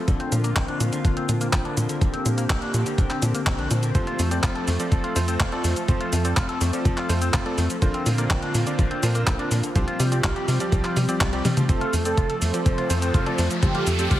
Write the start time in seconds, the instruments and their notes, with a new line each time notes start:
Already playing: analog synth pad C4
0.08 analog synth bass A#1, analog synth pad D3 A#3 F4, clean electric guitar D3, kick, closed hi-hat, cabasa
0.20 clean electric guitar C4, closed hi-hat
0.32 analog synth bass A#2, clean electric guitar F3, closed hi-hat, cabasa
0.44 clean electric guitar A#3, closed hi-hat, cabasa
0.56 analog synth bass A#1, clean electric guitar C4, kick, clap, closed hi-hat, cabasa
0.68 clean electric guitar D4, closed hi-hat
0.80 analog synth bass A#2, clean electric guitar F3, closed hi-hat, cabasa
0.93 clean electric guitar D3, closed hi-hat, cabasa
1.05 analog synth bass A#1, clean electric guitar D3, kick, closed hi-hat, cabasa
1.17 clean electric guitar C4, closed hi-hat
1.29 analog synth bass A#2, clean electric guitar F3, closed hi-hat, cabasa
1.41 clean electric guitar A#3, closed hi-hat, cabasa
1.53 analog synth bass A#1, clean electric guitar C4, kick, clap, closed hi-hat, cabasa
1.65 clean electric guitar D4, closed hi-hat
1.77 analog synth bass A#2, clean electric guitar F3, closed hi-hat, cabasa
1.89 clean electric guitar D3, closed hi-hat, cabasa
2.01 analog synth bass A#1, clean electric guitar D3, analog synth pad G4, kick, closed hi-hat, cabasa
2.13 clean electric guitar C4, closed hi-hat
2.26 analog synth bass A#2, clean electric guitar F3, closed hi-hat, cabasa
2.38 clean electric guitar A#3, closed hi-hat, cabasa
2.50 analog synth bass A#1, clean electric guitar C4, kick, clap, closed hi-hat
2.62 clean electric guitar D4, closed hi-hat
2.74 analog synth bass A#2, clean electric guitar F3, closed hi-hat, cabasa
2.86 clean electric guitar D3, closed hi-hat, cabasa
2.98 analog synth bass A#1, clean electric guitar D3, kick, closed hi-hat, cabasa
3.10 clean electric guitar C4, clap, closed hi-hat
3.22 analog synth bass A#2, clean electric guitar F3, closed hi-hat, cabasa
3.35 clean electric guitar A#3, closed hi-hat, cabasa
3.47 analog synth bass A#1, clean electric guitar C4, kick, clap, closed hi-hat, cabasa
3.59 clean electric guitar D4, closed hi-hat
3.71 analog synth bass A#2, clean electric guitar F3, closed hi-hat, cabasa
3.83 clean electric guitar D3, closed hi-hat, cabasa
3.95 analog synth bass F1, clean electric guitar F3, analog synth pad F3 A3 A4, electric grand piano C4 F4 A4 C5, kick, closed hi-hat, cabasa
4.07 clean electric guitar F4, closed hi-hat
4.19 analog synth bass F2, clean electric guitar A3, open hi-hat, cabasa
4.31 electric grand piano C4 F4 A4 D5, clean electric guitar C4, closed hi-hat, cabasa
4.43 analog synth bass F1, clean electric guitar F4, kick, clap, closed hi-hat, cabasa
4.55 clean electric guitar A4, closed hi-hat
4.68 analog synth bass F2, clean electric guitar A3, open hi-hat, cabasa
4.80 clean electric guitar F3, electric grand piano C4 F4 A4 D5, closed hi-hat, cabasa
4.92 analog synth bass F1, clean electric guitar F3, kick, closed hi-hat, cabasa
5.04 clean electric guitar F4, closed hi-hat
5.16 analog synth bass F2, clean electric guitar A3, electric grand piano C4 F4 A4 C5, open hi-hat, cabasa
5.28 clean electric guitar C4, closed hi-hat, cabasa
5.40 analog synth bass F1, clean electric guitar F4, kick, clap, closed hi-hat, cabasa
5.52 electric grand piano C4 F4 A4 D5, clean electric guitar A4, closed hi-hat
5.64 analog synth bass F2, clean electric guitar A3, open hi-hat, cabasa
5.76 clean electric guitar F3, closed hi-hat, cabasa
5.88 analog synth bass F1, clean electric guitar F3, electric grand piano C4 F4 A4 C5, kick, closed hi-hat, cabasa
6.01 clean electric guitar F4, closed hi-hat
6.13 analog synth bass F2, clean electric guitar A3, open hi-hat, cabasa
6.25 clean electric guitar C4, electric grand piano C4 F4 A4 D5, closed hi-hat, cabasa
6.37 analog synth bass F1, clean electric guitar F4, kick, clap, closed hi-hat, cabasa
6.49 clean electric guitar A4, closed hi-hat
6.61 analog synth bass F2, clean electric guitar A3, open hi-hat, cabasa
6.73 clean electric guitar F3, electric grand piano C4 F4 A4 D5, closed hi-hat, cabasa
6.85 analog synth bass F1, clean electric guitar F3, kick, closed hi-hat, cabasa
6.97 clean electric guitar F4, clap, closed hi-hat
7.09 analog synth bass F2, clean electric guitar A3, electric grand piano C4 F4 A4 C5, open hi-hat, cabasa
7.22 clean electric guitar C4, closed hi-hat, cabasa
7.34 analog synth bass F1, clean electric guitar F4, kick, clap, closed hi-hat, cabasa
7.46 electric grand piano C4 F4 A4 D5, clean electric guitar A4, closed hi-hat
7.58 analog synth bass F2, clean electric guitar A3, open hi-hat, cabasa
7.70 clean electric guitar F3, closed hi-hat, cabasa
7.82 analog synth bass A#1, analog synth pad D3 A#3 C4 F4, clean electric guitar D3, electric grand piano D4 F4 A#4 C5, kick, closed hi-hat, cabasa
7.94 clean electric guitar C4, closed hi-hat
8.06 analog synth bass A#2, clean electric guitar F3, open hi-hat, cabasa
8.18 clean electric guitar A#3, electric grand piano D4 F4 A#4 D5, closed hi-hat, cabasa
8.30 analog synth bass A#1, clean electric guitar C4, kick, clap, closed hi-hat, cabasa
8.42 clean electric guitar D4, closed hi-hat
8.54 analog synth bass A#2, clean electric guitar F3, open hi-hat, cabasa
8.67 clean electric guitar D3, electric grand piano D4 F4 A#4 D5, closed hi-hat, cabasa
8.79 analog synth bass A#1, clean electric guitar D3, kick, closed hi-hat, cabasa
8.91 clean electric guitar C4, closed hi-hat
9.03 analog synth bass A#2, clean electric guitar F3, electric grand piano D4 F4 A#4 C5, open hi-hat, cabasa
9.15 clean electric guitar A#3, closed hi-hat, cabasa
9.27 analog synth bass A#1, clean electric guitar C4, kick, clap, closed hi-hat, cabasa
9.39 electric grand piano D4 F4 A#4 D5, clean electric guitar D4, closed hi-hat
9.51 analog synth bass A#2, clean electric guitar F3, open hi-hat, cabasa
9.63 clean electric guitar D3, closed hi-hat, cabasa
9.75 analog synth bass C2, clean electric guitar F3, analog synth pad F3 G3 C4 G4, electric grand piano C4 F4 G4 C5, kick, closed hi-hat, cabasa
9.88 clean electric guitar F4, closed hi-hat
10.00 analog synth bass C3, clean electric guitar G3, open hi-hat, cabasa
10.12 clean electric guitar C4, electric grand piano C4 F4 G4 D5, closed hi-hat, cabasa
10.24 analog synth bass C2, clean electric guitar F4, kick, clap, closed hi-hat, cabasa
10.36 clean electric guitar G4, closed hi-hat
10.48 analog synth bass C3, clean electric guitar G3, open hi-hat, cabasa
10.60 clean electric guitar F3, electric grand piano C4 F4 G4 D5, closed hi-hat, cabasa
10.72 analog synth bass C2, clean electric guitar F3, kick, closed hi-hat, cabasa
10.84 clean electric guitar F4, clap, closed hi-hat
10.96 analog synth bass C3, clean electric guitar G3, open hi-hat, cabasa
11.09 electric grand piano C4 F4 G4 D5, clean electric guitar C4, closed hi-hat, cabasa
11.21 analog synth bass C2, clean electric guitar F4, kick, clap, closed hi-hat, cabasa
11.33 electric grand piano C4 F4 G4 D5, clean electric guitar G4, closed hi-hat
11.45 analog synth bass C3, clean electric guitar G3, open hi-hat, high tom, cabasa
11.57 clean electric guitar F3, closed hi-hat, mid tom, cabasa
11.69 analog synth bass F1, clean electric guitar F3, analog synth pad F3 A3 C4 A4, electric grand piano C4 F4 A4 C5, analog polysynth A4, kick, closed hi-hat, mid tom, riser, cabasa
11.81 clean electric guitar F4, closed hi-hat
11.93 analog synth bass F2, clean electric guitar A3, open hi-hat, cabasa
12.05 electric grand piano C4 F4 A4 D5, clean electric guitar C4, analog polysynth A4, closed hi-hat, cabasa
12.17 analog synth bass F1, clean electric guitar F4, kick, closed hi-hat, mid tom, cabasa
12.30 clean electric guitar A4, closed hi-hat
12.42 analog synth bass F2, clean electric guitar A3, analog polysynth C5, open hi-hat, cabasa
12.54 clean electric guitar F3, electric grand piano C4 F4 A4 D5, closed hi-hat, cabasa
12.66 analog synth bass F1, clean electric guitar F3, kick, closed hi-hat, mid tom, cabasa
12.78 clean electric guitar F4, closed hi-hat
12.90 analog synth bass F2, clean electric guitar A3, electric grand piano C4 F4 A4 C5, open hi-hat, cabasa
13.02 clean electric guitar C4, closed hi-hat, cabasa
13.14 analog synth bass F1, clean electric guitar F4, kick, closed hi-hat, mid tom, cabasa
13.26 electric grand piano C4 F4 A4 D5, clean electric guitar A4, closed hi-hat
13.38 analog synth bass F2, clean electric guitar A3, open hi-hat, cabasa
13.51 clean electric guitar F3, closed hi-hat, cabasa
13.63 analog synth bass F1, clean electric guitar F3, electric grand piano C4 F4 A4 C5, analog polysynth G4, kick, closed hi-hat, mid tom, cabasa
13.75 clean electric guitar F4, closed hi-hat
13.87 analog synth bass F2, clean electric guitar A3, open hi-hat, cabasa
13.99 electric grand piano C4 F4 A4 D5, clean electric guitar C4, analog polysynth G4, closed hi-hat, cabasa
14.11 analog synth bass F1, clean electric guitar F4, kick, closed hi-hat, mid tom, cabasa